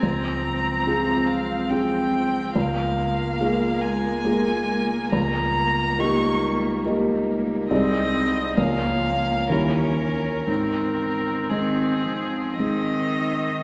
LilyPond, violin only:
\new Staff \with { instrumentName = "Violin" } { \time 3/4 \key des \lydian \tempo 4 = 69 bes''4. f''8 g''4 | \key aes \major f''4. aes''4. | bes''4 des'''8 r4. | ees''4 f''4 bes'4 |
bes'4 aes'4 ees''4 | }